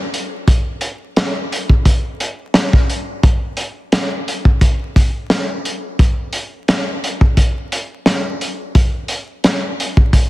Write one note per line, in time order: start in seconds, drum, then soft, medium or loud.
0.14 closed hi-hat medium
0.48 kick loud
0.48 closed hi-hat medium
0.81 closed hi-hat medium
1.16 snare loud
1.16 snare medium
1.16 closed hi-hat medium
1.52 closed hi-hat medium
1.69 kick medium
1.85 kick loud
1.85 closed hi-hat loud
2.20 closed hi-hat medium
2.54 snare loud
2.54 closed hi-hat medium
2.73 kick loud
2.73 snare soft
2.90 closed hi-hat medium
3.23 kick loud
3.23 closed hi-hat medium
3.57 closed hi-hat medium
3.92 snare loud
3.92 snare medium
3.92 closed hi-hat medium
4.28 closed hi-hat medium
4.45 kick loud
4.61 kick loud
4.61 closed hi-hat loud
4.96 kick medium
4.96 closed hi-hat medium
5.30 snare loud
5.30 snare medium
5.30 closed hi-hat medium
5.65 closed hi-hat medium
5.99 kick loud
5.99 closed hi-hat medium
6.33 closed hi-hat medium
6.68 snare loud
6.68 snare medium
6.68 closed hi-hat medium
7.04 closed hi-hat medium
7.21 kick loud
7.37 kick loud
7.37 closed hi-hat loud
7.72 closed hi-hat medium
8.06 snare loud
8.06 snare medium
8.06 closed hi-hat medium
8.41 closed hi-hat medium
8.75 kick loud
8.75 closed hi-hat medium
9.08 closed hi-hat medium
9.44 snare loud
9.44 snare medium
9.44 closed hi-hat medium
9.80 closed hi-hat medium
9.97 kick loud
10.13 kick loud
10.13 closed hi-hat loud